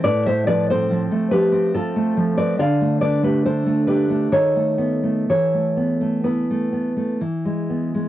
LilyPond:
\new Staff \with { instrumentName = "Nylon-string guitar" } { \time 3/4 \key e \phrygian \tempo 4 = 67 << { <b' d''>16 <c'' e''>16 <b' d''>16 <a' c''>8. <g' b'>8 <f' a'>8. <b' d''>16 | <d'' f''>8 <b' d''>16 <g' b'>16 <a' c''>8 <g' b'>8 <a' cis''>4 | <a' cis''>4 <e' b'>4. r8 | } \\ { a,16 a16 f16 c'16 f16 a16 f16 c'8 a16 f16 c'16 | d16 a16 d'16 a16 d'16 a16 d'16 a16 dis16 a16 b16 a16 | e16 a16 b16 a16 b16 a16 b16 a16 e16 gis16 b16 gis16 | } >> }